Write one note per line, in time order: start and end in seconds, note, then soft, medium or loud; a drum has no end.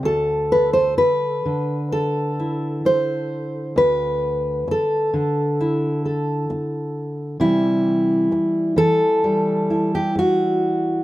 0.00 0.97 D2 medium
0.00 1.44 D3 medium
0.05 1.46 A4 medium
0.52 0.73 B4 medium
0.73 0.97 C5 medium
0.98 2.85 B4 medium
0.98 muted steel-string acoustic guitar stroke medium
1.45 5.12 D3 medium
1.92 3.76 A4 medium
2.39 3.79 E4 soft
2.85 3.77 C5 medium
2.85 muted steel-string acoustic guitar stroke medium
3.76 4.66 D2 medium
3.76 5.59 B4 medium
4.68 6.04 A4 medium
4.68 muted steel-string acoustic guitar stroke medium
5.13 7.40 D3 medium
5.61 7.36 E4 soft
6.05 7.36 A4 soft
6.50 muted steel-string acoustic guitar stroke medium
7.40 8.31 C3 medium
7.40 8.75 E3 soft
7.40 9.23 G3 soft
7.40 8.77 E4 medium
8.31 muted steel-string acoustic guitar stroke medium
8.76 11.02 E3 medium
8.76 9.93 A4 loud
9.24 11.04 G3 soft
9.70 11.03 E4 soft
9.95 10.17 G4 medium
10.15 11.04 F#4 medium
10.15 muted steel-string acoustic guitar stroke medium